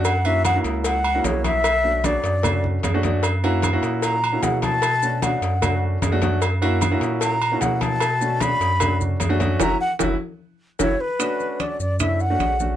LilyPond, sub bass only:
\new Staff \with { instrumentName = "Sub bass" } { \clef bass \time 4/4 \key b \minor \tempo 4 = 151 fis,4. cis,4. b,,4~ | b,,4. fis,4. fis,4~ | fis,4. ais,4. b,4~ | b,4. fis,4. fis,4~ |
fis,4. ais,4. b,4~ | b,4. fis,4. fis,4 | fis,,8 r8 fis,,8 r4. fis,,8 r8 | r4. fis,4. ais,,4 | }